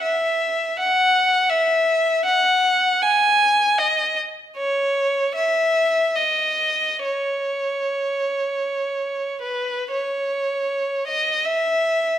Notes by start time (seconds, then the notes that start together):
0.03 E5
0.79 F#5
1.50 E5
2.26 F#5
3.02 G#5
3.79 D#5
4.57 C#5
5.35 E5
6.16 D#5
7.04 C#5
9.42 B4
9.91 C#5
11.08 D#5
11.46 E5